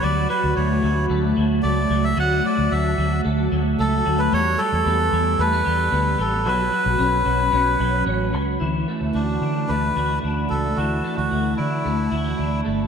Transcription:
X:1
M:4/4
L:1/16
Q:1/4=112
K:D
V:1 name="Melodica"
d2 B2 c4 z4 d3 e | f2 d2 e4 z4 A3 B | c2 A6 B6 A2 | B12 z4 |
z4 D4 B4 z2 A2 | F3 F3 E8 z2 |]
V:2 name="Clean electric guitar"
F,2 F,2 A,2 F,2 A,2 F,2 A,2 F,2 | F,2 F,2 A,2 F,2 A,2 F,2 A,2 F,2 | G,2 G,2 B,2 G,2 A, B, G,2 B,2 G,2 | F,2 F,2 C2 F,2 C2 F,2 C2 F,2 |
E,2 A,2 F2 D2 A,2 F2 D2 A,2 | E,2 A,2 F2 D2 A,2 E F D2 A,2 |]
V:3 name="Fingered electric bass" clef=bass
D,,2 z D,, D,,2 D,,2 D,,2 D,,2 C,,2 C,,2 | D,,2 z D,, D,,2 D,,2 D,,2 D,,2 C,,2 D,,2 | E,,2 z E,, E,,2 E,,2 E,,2 E,,2 D,,2 A,,,2 | B,,,2 z B,,, B,,,2 B,,,2 B,,,2 B,,,2 A,,,2 C,,2 |
D,,2 z D,, D,,2 D,2 D,,2 D,,2 D,,2 C,,2 | D,,2 z D,, D,,2 D,2 D,,2 D,,2 D,,2 G,,,2 |]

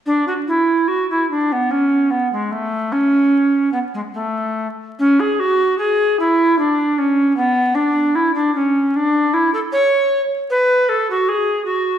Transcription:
X:1
M:3/4
L:1/16
Q:1/4=75
K:C#phr
V:1 name="Recorder"
D F E2 F E D B, C2 B, G, | A,2 C4 B, G, A,4 | C G F2 G2 E2 D2 C2 | B,2 D2 E D C2 D2 E A |
c3 z B2 A F G2 F2 |]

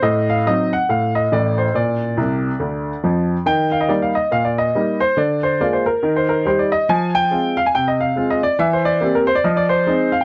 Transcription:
X:1
M:4/4
L:1/16
Q:"Swing" 1/4=140
K:Eb
V:1 name="Grand piano"
e2 f2 e2 ^f2 =f2 e2 d2 c2 | d12 z4 | g2 f e d f e2 f d e4 c2 | d2 c2 d c B3 c B2 c d e2 |
a2 g4 f a g e f3 e d2 | =e c d3 B c d _e d c4 f g |]
V:2 name="Grand piano" clef=bass
=A,,4 [^F,CE]4 A,,4 [=A,,,A,,]4 | B,,4 [C,,C,]4 [D,,D,]4 [F,,F,]4 | E,4 [G,B,E]4 B,,4 [G,B,E]4 | D,4 [A,B,F]4 E,4 [G,EG]4 |
F,4 [A,CF]4 C,4 [A,CF]4 | =E,4 [B,CG]4 F,4 [A,C_E]4 |]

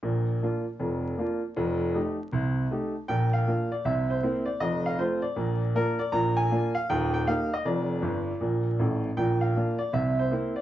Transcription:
X:1
M:4/4
L:1/8
Q:"Swing" 1/4=158
K:Bb
V:1 name="Grand piano"
z8 | z8 | g f2 d =e c2 d | e f c d3 B d |
b _a2 f g g f e | d6- d z | g f2 d =e c2 d |]
V:2 name="Grand piano"
[B,,,B,,]2 [B,DF]2 [F,,,F,,]2 [B,DF]2 | [F,,,F,,]2 [A,EG]2 [C,,C,]2 [A,EG]2 | [B,,,B,,]2 [B,DF]2 [C,,C,]2 [B,C=E]2 | [F,,,F,,]2 [A,CF]2 [B,,,B,,]2 [B,DF]2 |
[B,,,B,,]2 [B,DF]2 [E,,,E,,]2 [B,EG]2 | [F,,,F,,]2 [G,,,G,,]2 [B,,,B,,]2 [A,,,A,,]2 | [B,,,B,,]2 [B,DF]2 [C,,C,]2 [B,C=E]2 |]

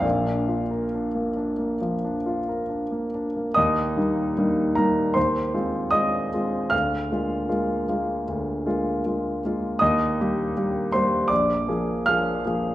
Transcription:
X:1
M:4/4
L:1/16
Q:1/4=77
K:Bbmix
V:1 name="Grand piano"
f12- f2 z2 | [ee']6 [Bb]2 [cc']4 [ee']4 | [ff']16 | [ee']6 [cc']2 [dd']4 [ff']4 |]
V:2 name="Grand piano"
[B,,,B,,] D F B D B, D B, F, D F B D B, D B, | E,,2 [G,B,E]2 [G,B,E]2 [G,B,E]2 E,,2 [A,CF]2 [A,CF]2 [A,CF]2 | D,,2 [A,B,F]2 [A,B,F]2 [A,B,F]2 D,,2 [A,B,F]2 [A,B,F]2 [A,B,F]2 | E,,2 [G,B,G]2 [G,B,G]2 [G,B,G]2 B,,,2 [F,B,A]2 [F,B,A]2 [F,B,A]2 |]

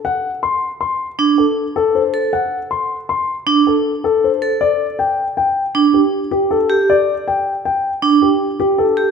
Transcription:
X:1
M:6/4
L:1/8
Q:1/4=158
K:Dmix
V:1 name="Grand piano"
f z c' z c' z2 A z A c z | f z c' z c' z2 A z A c z | d z g z g z2 G z G A z | d z g z g z2 G z G A z |]
V:2 name="Vibraphone"
z6 D z4 A | z6 D z4 A | z6 D z4 G | z6 D z4 G |]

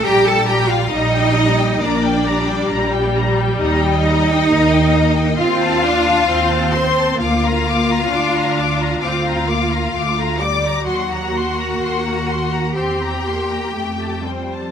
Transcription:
X:1
M:4/4
L:1/16
Q:1/4=66
K:Bb
V:1 name="Violin section"
b g b g b g b g b g b g b g b g | b g b g b g b g c' a c' a c' a c' a | d' b d' b d' b d' b d' b d' b d' b d' b | c' b c' b c' b c' b c' b c' b g a g a |]
V:2 name="Violin section"
g a g f e4 d6 z2 | e8 f6 c'2 | f8 f6 d'2 | _g8 =g6 c2 |]
V:3 name="Cello section"
G A G F E4 D6 z2 | E8 F6 c2 | F8 F6 d2 | _G8 =G6 C2 |]
V:4 name="Viola section"
G,4 G,4 B,2 G,6- | G,4 B,4 C2 D2 C4 | B,4 D4 C2 B,2 A,2 G,2 | _G,2 B,6 C2 B,2 A,2 =G,2 |]
V:5 name="Double bass section" clef=bass
B,,,4 B,,,4 B,,,4 B,,,4 | E,,4 E,,4 E,,4 E,,4 | D,,4 D,,4 D,,4 D,,4 | E,,4 E,,4 =E,,4 F,,4 |]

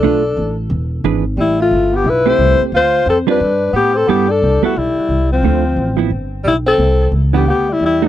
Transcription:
X:1
M:4/4
L:1/8
Q:"Swing" 1/4=178
K:Gmix
V:1 name="Alto saxophone"
A3 z4 z | E F2 G B c2 z | c2 A B3 G A | [K:G] G A2 F E3 C- |
C3 z3 E A- | A2 z G G E E z |]
V:2 name="Hollow-body jazz guitar"
[A,DF] z4 z [E,D^GB] z | z4 z [A,CG]3 | z3 [G,DFB] z4 | [K:G] [G,B,EA] z2 [G,B,EA] z4 |
[D,A,C=F] z2 [=F,B,E] z4 | z3 [E,B,D] z3 [A,_EF] |]
V:3 name="Tenor saxophone"
D3 z4 z | G, A,2 B, E E2 z | F2 C D3 B, C | [K:G] B, D2 A, G,3 =F,- |
=F,3 z3 G, C- | C2 z B, B, G, G, F, |]
V:4 name="Upright bass" clef=bass
B,,,2 A,,,2 E,,,2 ^G,,,2 | A,,,2 G,,,2 B,,,2 C,, z | D,,2 F,,2 G,,2 A,,2 | [K:G] G,,2 C,, z B,,, z C,,2 |
D,,2 A,,,2 G,,,2 B,,,2 | C,,2 ^C,,2 D,,2 E,,2 |]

